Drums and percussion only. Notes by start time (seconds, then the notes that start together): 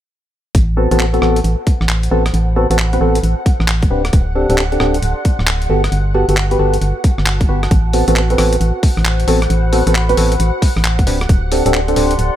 0.55 kick, closed hi-hat
0.91 closed hi-hat
0.99 clap
1.14 closed hi-hat
1.22 cross-stick
1.36 closed hi-hat
1.44 closed hi-hat
1.67 kick, closed hi-hat
1.81 cross-stick
1.89 clap
2.03 closed hi-hat
2.26 cross-stick, closed hi-hat
2.34 closed hi-hat
2.71 closed hi-hat
2.79 clap
2.93 closed hi-hat
3.15 closed hi-hat
3.24 closed hi-hat
3.46 kick, closed hi-hat
3.60 cross-stick
3.68 clap
3.82 kick, closed hi-hat
4.05 cross-stick, closed hi-hat
4.13 kick, closed hi-hat
4.50 closed hi-hat
4.58 clap
4.72 closed hi-hat
4.80 cross-stick
4.94 closed hi-hat
5.03 closed hi-hat
5.25 kick, closed hi-hat
5.39 cross-stick
5.47 clap
5.62 closed hi-hat
5.84 cross-stick, closed hi-hat
5.92 closed hi-hat
6.29 closed hi-hat
6.37 clap
6.51 closed hi-hat
6.74 closed hi-hat
6.82 closed hi-hat
7.04 kick, closed hi-hat
7.18 cross-stick
7.26 clap
7.41 kick, closed hi-hat
7.63 cross-stick, closed hi-hat
7.71 kick, closed hi-hat
7.93 open hi-hat
8.08 closed hi-hat
8.16 clap
8.30 closed hi-hat
8.38 cross-stick, open hi-hat
8.53 closed hi-hat
8.61 closed hi-hat
8.83 kick, open hi-hat
8.97 cross-stick
9.05 clap
9.20 closed hi-hat
9.28 open hi-hat
9.42 cross-stick, closed hi-hat
9.50 closed hi-hat
9.73 open hi-hat
9.87 closed hi-hat
9.95 clap
10.09 closed hi-hat
10.17 open hi-hat
10.32 closed hi-hat
10.40 closed hi-hat
10.62 kick, open hi-hat
10.77 cross-stick
10.85 clap
10.99 kick, closed hi-hat
11.07 open hi-hat
11.21 cross-stick, closed hi-hat
11.29 kick, closed hi-hat
11.52 open hi-hat
11.66 closed hi-hat
11.74 clap
11.88 closed hi-hat
11.96 open hi-hat
12.11 closed hi-hat
12.19 closed hi-hat